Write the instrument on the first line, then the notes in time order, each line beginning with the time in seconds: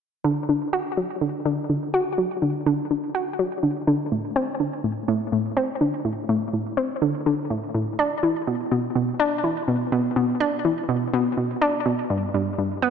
synth arpeggio sound
0.24 D3
0.49 D3
0.73 F#4
0.97 F#3
1.21 D3
1.45 D3
1.70 D3
1.94 F#4
2.18 F#3
2.42 D3
2.66 D3
2.91 D3
3.15 F#4
3.39 F#3
3.63 D3
3.87 D3
4.12 A2
4.36 C4
4.60 D3
4.84 A2
5.08 A2
5.32 A2
5.57 C4
5.81 D3
6.05 A2
6.29 A2
6.53 A2
6.77 C4
7.02 D3
7.26 D3
7.50 A2
7.74 A2
7.99 D4
8.23 E3
8.47 B2
8.71 B2
8.95 B2
9.20 D4
9.44 E3
9.68 B2
9.92 B2
10.16 B2
10.40 D4
10.65 E3
10.89 B2
11.14 B2
11.37 B2
11.62 D4
11.86 B2
12.10 G2
12.34 G2
12.58 G2
12.82 B3